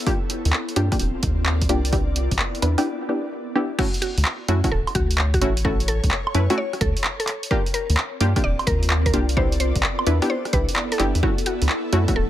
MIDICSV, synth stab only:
0, 0, Header, 1, 2, 480
1, 0, Start_track
1, 0, Tempo, 465116
1, 68, Time_signature, 4, 2, 24, 8
1, 12691, End_track
2, 0, Start_track
2, 0, Title_t, "Synth stab"
2, 0, Program_c, 0, 62
2, 67, Note_on_c, 0, 58, 101
2, 67, Note_on_c, 0, 62, 94
2, 67, Note_on_c, 0, 65, 91
2, 67, Note_on_c, 0, 67, 112
2, 188, Note_off_c, 0, 62, 0
2, 189, Note_off_c, 0, 58, 0
2, 189, Note_off_c, 0, 65, 0
2, 189, Note_off_c, 0, 67, 0
2, 787, Note_on_c, 0, 58, 94
2, 787, Note_on_c, 0, 62, 90
2, 787, Note_on_c, 0, 65, 86
2, 788, Note_on_c, 0, 67, 104
2, 910, Note_off_c, 0, 58, 0
2, 910, Note_off_c, 0, 62, 0
2, 910, Note_off_c, 0, 65, 0
2, 910, Note_off_c, 0, 67, 0
2, 948, Note_on_c, 0, 65, 68
2, 948, Note_on_c, 0, 67, 84
2, 949, Note_on_c, 0, 58, 75
2, 949, Note_on_c, 0, 62, 70
2, 1008, Note_off_c, 0, 62, 0
2, 1008, Note_off_c, 0, 65, 0
2, 1008, Note_off_c, 0, 67, 0
2, 1009, Note_off_c, 0, 58, 0
2, 1747, Note_on_c, 0, 58, 93
2, 1748, Note_on_c, 0, 62, 87
2, 1748, Note_on_c, 0, 65, 84
2, 1748, Note_on_c, 0, 67, 103
2, 1869, Note_off_c, 0, 58, 0
2, 1869, Note_off_c, 0, 62, 0
2, 1869, Note_off_c, 0, 65, 0
2, 1869, Note_off_c, 0, 67, 0
2, 1988, Note_on_c, 0, 59, 84
2, 1988, Note_on_c, 0, 62, 75
2, 1988, Note_on_c, 0, 64, 76
2, 1988, Note_on_c, 0, 67, 94
2, 2689, Note_off_c, 0, 59, 0
2, 2689, Note_off_c, 0, 62, 0
2, 2689, Note_off_c, 0, 64, 0
2, 2689, Note_off_c, 0, 67, 0
2, 2707, Note_on_c, 0, 59, 84
2, 2707, Note_on_c, 0, 62, 77
2, 2708, Note_on_c, 0, 64, 79
2, 2708, Note_on_c, 0, 71, 94
2, 2844, Note_off_c, 0, 59, 0
2, 2844, Note_off_c, 0, 62, 0
2, 2844, Note_off_c, 0, 64, 0
2, 2844, Note_off_c, 0, 71, 0
2, 2868, Note_on_c, 0, 59, 91
2, 2868, Note_on_c, 0, 62, 86
2, 2868, Note_on_c, 0, 64, 83
2, 2869, Note_on_c, 0, 67, 106
2, 2981, Note_off_c, 0, 59, 0
2, 2981, Note_off_c, 0, 62, 0
2, 2981, Note_off_c, 0, 64, 0
2, 2981, Note_off_c, 0, 67, 0
2, 3188, Note_on_c, 0, 59, 74
2, 3188, Note_on_c, 0, 62, 68
2, 3188, Note_on_c, 0, 64, 66
2, 3188, Note_on_c, 0, 67, 83
2, 3365, Note_off_c, 0, 59, 0
2, 3365, Note_off_c, 0, 62, 0
2, 3365, Note_off_c, 0, 64, 0
2, 3365, Note_off_c, 0, 67, 0
2, 3668, Note_on_c, 0, 62, 87
2, 3668, Note_on_c, 0, 64, 87
2, 3668, Note_on_c, 0, 67, 106
2, 3669, Note_on_c, 0, 59, 91
2, 3889, Note_off_c, 0, 59, 0
2, 3889, Note_off_c, 0, 62, 0
2, 3889, Note_off_c, 0, 64, 0
2, 3889, Note_off_c, 0, 67, 0
2, 3908, Note_on_c, 0, 57, 102
2, 3908, Note_on_c, 0, 61, 94
2, 3908, Note_on_c, 0, 64, 95
2, 3908, Note_on_c, 0, 66, 112
2, 4029, Note_off_c, 0, 57, 0
2, 4029, Note_off_c, 0, 61, 0
2, 4029, Note_off_c, 0, 64, 0
2, 4029, Note_off_c, 0, 66, 0
2, 4629, Note_on_c, 0, 57, 95
2, 4629, Note_on_c, 0, 61, 88
2, 4629, Note_on_c, 0, 64, 87
2, 4629, Note_on_c, 0, 66, 104
2, 4750, Note_off_c, 0, 57, 0
2, 4750, Note_off_c, 0, 61, 0
2, 4750, Note_off_c, 0, 64, 0
2, 4750, Note_off_c, 0, 66, 0
2, 4790, Note_on_c, 0, 57, 76
2, 4790, Note_on_c, 0, 61, 70
2, 4790, Note_on_c, 0, 64, 70
2, 4790, Note_on_c, 0, 66, 84
2, 4849, Note_off_c, 0, 57, 0
2, 4849, Note_off_c, 0, 61, 0
2, 4849, Note_off_c, 0, 64, 0
2, 4849, Note_off_c, 0, 66, 0
2, 5587, Note_on_c, 0, 61, 86
2, 5588, Note_on_c, 0, 57, 91
2, 5588, Note_on_c, 0, 64, 87
2, 5588, Note_on_c, 0, 66, 101
2, 5709, Note_off_c, 0, 57, 0
2, 5709, Note_off_c, 0, 61, 0
2, 5709, Note_off_c, 0, 64, 0
2, 5709, Note_off_c, 0, 66, 0
2, 5828, Note_on_c, 0, 57, 89
2, 5828, Note_on_c, 0, 61, 75
2, 5829, Note_on_c, 0, 64, 79
2, 5829, Note_on_c, 0, 66, 97
2, 6529, Note_off_c, 0, 57, 0
2, 6529, Note_off_c, 0, 61, 0
2, 6529, Note_off_c, 0, 64, 0
2, 6529, Note_off_c, 0, 66, 0
2, 6548, Note_on_c, 0, 61, 79
2, 6548, Note_on_c, 0, 64, 80
2, 6548, Note_on_c, 0, 71, 96
2, 6549, Note_on_c, 0, 57, 90
2, 6685, Note_off_c, 0, 57, 0
2, 6685, Note_off_c, 0, 61, 0
2, 6685, Note_off_c, 0, 64, 0
2, 6685, Note_off_c, 0, 71, 0
2, 6709, Note_on_c, 0, 57, 95
2, 6709, Note_on_c, 0, 61, 87
2, 6709, Note_on_c, 0, 64, 82
2, 6709, Note_on_c, 0, 66, 104
2, 6821, Note_off_c, 0, 57, 0
2, 6821, Note_off_c, 0, 61, 0
2, 6821, Note_off_c, 0, 64, 0
2, 6821, Note_off_c, 0, 66, 0
2, 7749, Note_on_c, 0, 58, 101
2, 7749, Note_on_c, 0, 62, 91
2, 7749, Note_on_c, 0, 65, 94
2, 7749, Note_on_c, 0, 67, 116
2, 7870, Note_off_c, 0, 58, 0
2, 7870, Note_off_c, 0, 62, 0
2, 7870, Note_off_c, 0, 65, 0
2, 7870, Note_off_c, 0, 67, 0
2, 8469, Note_on_c, 0, 58, 101
2, 8469, Note_on_c, 0, 62, 87
2, 8469, Note_on_c, 0, 65, 90
2, 8470, Note_on_c, 0, 67, 104
2, 8591, Note_off_c, 0, 58, 0
2, 8591, Note_off_c, 0, 62, 0
2, 8591, Note_off_c, 0, 65, 0
2, 8591, Note_off_c, 0, 67, 0
2, 8629, Note_on_c, 0, 58, 74
2, 8630, Note_on_c, 0, 62, 70
2, 8630, Note_on_c, 0, 65, 69
2, 8630, Note_on_c, 0, 67, 84
2, 8689, Note_off_c, 0, 58, 0
2, 8689, Note_off_c, 0, 62, 0
2, 8689, Note_off_c, 0, 65, 0
2, 8689, Note_off_c, 0, 67, 0
2, 9428, Note_on_c, 0, 58, 95
2, 9429, Note_on_c, 0, 62, 87
2, 9429, Note_on_c, 0, 65, 87
2, 9429, Note_on_c, 0, 67, 103
2, 9549, Note_off_c, 0, 58, 0
2, 9549, Note_off_c, 0, 62, 0
2, 9549, Note_off_c, 0, 65, 0
2, 9549, Note_off_c, 0, 67, 0
2, 9668, Note_on_c, 0, 62, 78
2, 9668, Note_on_c, 0, 67, 91
2, 9669, Note_on_c, 0, 59, 88
2, 9669, Note_on_c, 0, 64, 76
2, 10369, Note_off_c, 0, 59, 0
2, 10369, Note_off_c, 0, 62, 0
2, 10369, Note_off_c, 0, 64, 0
2, 10369, Note_off_c, 0, 67, 0
2, 10389, Note_on_c, 0, 59, 85
2, 10389, Note_on_c, 0, 62, 79
2, 10389, Note_on_c, 0, 64, 81
2, 10389, Note_on_c, 0, 71, 98
2, 10525, Note_off_c, 0, 59, 0
2, 10525, Note_off_c, 0, 62, 0
2, 10525, Note_off_c, 0, 64, 0
2, 10525, Note_off_c, 0, 71, 0
2, 10549, Note_on_c, 0, 59, 94
2, 10549, Note_on_c, 0, 62, 89
2, 10549, Note_on_c, 0, 64, 83
2, 10549, Note_on_c, 0, 67, 103
2, 10661, Note_off_c, 0, 59, 0
2, 10661, Note_off_c, 0, 62, 0
2, 10661, Note_off_c, 0, 64, 0
2, 10661, Note_off_c, 0, 67, 0
2, 10867, Note_on_c, 0, 64, 69
2, 10867, Note_on_c, 0, 67, 80
2, 10868, Note_on_c, 0, 59, 73
2, 10868, Note_on_c, 0, 62, 72
2, 11045, Note_off_c, 0, 59, 0
2, 11045, Note_off_c, 0, 62, 0
2, 11045, Note_off_c, 0, 64, 0
2, 11045, Note_off_c, 0, 67, 0
2, 11348, Note_on_c, 0, 59, 91
2, 11348, Note_on_c, 0, 62, 86
2, 11348, Note_on_c, 0, 64, 89
2, 11348, Note_on_c, 0, 67, 108
2, 11569, Note_off_c, 0, 59, 0
2, 11569, Note_off_c, 0, 62, 0
2, 11569, Note_off_c, 0, 64, 0
2, 11569, Note_off_c, 0, 67, 0
2, 11588, Note_on_c, 0, 57, 98
2, 11588, Note_on_c, 0, 61, 94
2, 11588, Note_on_c, 0, 64, 95
2, 11588, Note_on_c, 0, 66, 112
2, 11709, Note_off_c, 0, 57, 0
2, 11709, Note_off_c, 0, 61, 0
2, 11709, Note_off_c, 0, 64, 0
2, 11709, Note_off_c, 0, 66, 0
2, 12308, Note_on_c, 0, 57, 97
2, 12308, Note_on_c, 0, 61, 92
2, 12308, Note_on_c, 0, 64, 85
2, 12308, Note_on_c, 0, 66, 107
2, 12430, Note_off_c, 0, 57, 0
2, 12430, Note_off_c, 0, 61, 0
2, 12430, Note_off_c, 0, 64, 0
2, 12430, Note_off_c, 0, 66, 0
2, 12468, Note_on_c, 0, 64, 70
2, 12469, Note_on_c, 0, 57, 77
2, 12469, Note_on_c, 0, 61, 69
2, 12469, Note_on_c, 0, 66, 83
2, 12528, Note_off_c, 0, 57, 0
2, 12528, Note_off_c, 0, 61, 0
2, 12528, Note_off_c, 0, 64, 0
2, 12529, Note_off_c, 0, 66, 0
2, 12691, End_track
0, 0, End_of_file